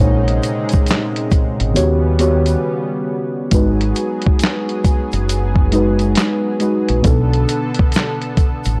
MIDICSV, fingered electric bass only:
0, 0, Header, 1, 2, 480
1, 0, Start_track
1, 0, Key_signature, 5, "minor"
1, 0, Tempo, 882353
1, 1915, Time_signature, 4, 2, 24, 8
1, 4787, End_track
2, 0, Start_track
2, 0, Title_t, "Fingered electric bass"
2, 0, Program_c, 0, 33
2, 0, Note_on_c, 0, 34, 112
2, 210, Note_off_c, 0, 34, 0
2, 875, Note_on_c, 0, 32, 96
2, 951, Note_off_c, 0, 32, 0
2, 964, Note_on_c, 0, 39, 97
2, 1386, Note_off_c, 0, 39, 0
2, 1918, Note_on_c, 0, 32, 95
2, 2130, Note_off_c, 0, 32, 0
2, 2793, Note_on_c, 0, 30, 88
2, 3337, Note_off_c, 0, 30, 0
2, 3752, Note_on_c, 0, 34, 76
2, 3829, Note_off_c, 0, 34, 0
2, 3837, Note_on_c, 0, 35, 108
2, 4049, Note_off_c, 0, 35, 0
2, 4713, Note_on_c, 0, 33, 93
2, 4787, Note_off_c, 0, 33, 0
2, 4787, End_track
0, 0, End_of_file